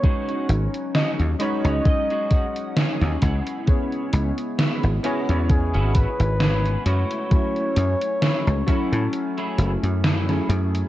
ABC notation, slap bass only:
X:1
M:4/4
L:1/16
Q:"Swing 16ths" 1/4=66
K:C#m
V:1 name="Slap bass" clef=bass
z2 G,,, z2 D,, z C,, z4 z D,, C,, z | z2 C,, z2 G,,, z E,,2 G,,, z G,,,3 F,, z | z2 F,, z2 C,, z A,, z2 F,,, F,,3 F,, z |]